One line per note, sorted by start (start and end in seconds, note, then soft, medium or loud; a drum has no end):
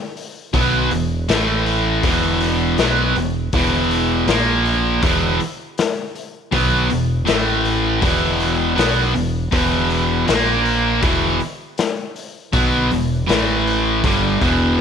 0.17 open hi-hat soft
0.53 0.88 B1 medium
0.53 0.90 B2 medium
0.53 0.90 F#3 medium
0.53 0.90 B3 medium
0.53 kick loud
0.53 open hi-hat medium
0.91 1.26 E1 medium
0.91 1.21 E2 medium
0.91 1.21 B2 medium
0.91 open hi-hat medium
1.29 1.99 A1 medium
1.29 2.02 A2 medium
1.29 2.03 E3 medium
1.29 2.03 A3 medium
1.29 snare medium
1.29 open hi-hat medium
1.66 open hi-hat soft
2.03 2.74 E1 medium
2.03 2.77 E2 medium
2.03 2.77 B2 medium
2.03 2.78 E3 loud
2.03 kick loud
2.03 open hi-hat medium
2.40 open hi-hat medium
2.78 3.13 B1 medium
2.78 3.15 B2 medium
2.78 3.15 F#3 medium
2.78 3.16 B3 medium
2.78 snare loud
2.78 open hi-hat medium
3.16 3.51 E1 medium
3.16 3.47 E2 medium
3.16 3.47 B2 medium
3.16 open hi-hat soft
3.53 4.24 E1 medium
3.53 4.27 E2 medium
3.53 4.27 B2 medium
3.53 4.28 E3 medium
3.53 kick loud
3.53 open hi-hat medium
3.91 open hi-hat soft
4.27 4.99 A#1 medium
4.27 5.02 A#2 medium
4.27 5.02 F3 medium
4.27 5.02 A#3 loud
4.27 snare loud
4.27 open hi-hat medium
4.65 open hi-hat soft
5.02 5.38 E1 medium
5.02 5.39 E2 medium
5.02 5.40 B2 loud
5.02 5.40 E3 loud
5.02 kick loud
5.02 open hi-hat medium
5.40 open hi-hat soft
5.78 snare loud
5.78 open hi-hat medium
6.15 open hi-hat soft
6.51 6.88 B1 medium
6.51 6.88 B2 medium
6.51 6.89 F#3 medium
6.51 6.89 B3 loud
6.51 kick medium
6.51 open hi-hat medium
6.89 7.26 E1 medium
6.89 7.20 E2 medium
6.89 7.20 B2 medium
6.89 open hi-hat soft
7.25 7.99 A1 medium
7.25 8.00 A2 medium
7.25 8.01 E3 medium
7.25 8.01 A3 medium
7.25 snare loud
7.25 open hi-hat medium
7.65 open hi-hat soft
8.01 8.74 E1 medium
8.01 8.76 E2 medium
8.01 8.74 B2 medium
8.01 8.75 E3 medium
8.01 kick medium
8.01 open hi-hat medium
8.40 open hi-hat soft
8.75 9.13 B1 medium
8.75 9.13 B2 medium
8.75 9.13 F#3 medium
8.75 9.14 B3 medium
8.75 open hi-hat medium
8.79 snare loud
9.14 9.50 E1 medium
9.14 9.45 E2 medium
9.14 9.45 B2 medium
9.14 open hi-hat soft
9.51 10.24 E1 medium
9.51 10.26 E2 medium
9.51 10.26 B2 medium
9.51 10.27 E3 medium
9.51 kick loud
9.51 open hi-hat medium
9.90 open hi-hat soft
10.26 10.99 A#1 medium
10.26 11.01 A#2 medium
10.26 11.01 F3 medium
10.26 11.02 A#3 loud
10.26 snare loud
10.26 open hi-hat medium
10.65 open hi-hat soft
11.01 11.38 E1 medium
11.01 11.39 E2 medium
11.01 11.39 B2 medium
11.01 11.39 E3 loud
11.01 kick loud
11.01 open hi-hat medium
11.40 open hi-hat soft
11.78 snare loud
11.78 open hi-hat medium
12.16 open hi-hat soft
12.53 12.88 B1 medium
12.53 12.89 B2 medium
12.53 12.90 F#3 medium
12.53 12.90 B3 medium
12.53 kick loud
12.53 open hi-hat medium
12.91 13.26 E1 medium
12.91 13.22 E2 medium
12.91 13.22 B2 medium
12.91 open hi-hat soft
13.27 14.00 A1 loud
13.27 14.02 A2 medium
13.27 14.02 E3 medium
13.27 14.03 A3 medium
13.27 snare loud
13.27 open hi-hat medium
13.67 open hi-hat soft
14.04 14.39 G1 medium
14.04 14.41 G2 medium
14.04 14.41 D3 medium
14.04 14.41 G3 loud
14.04 kick loud
14.04 open hi-hat medium
14.41 14.76 E1 medium
14.41 14.78 E2 medium
14.41 14.78 B2 medium
14.41 14.79 E3 medium
14.41 kick loud
14.41 open hi-hat soft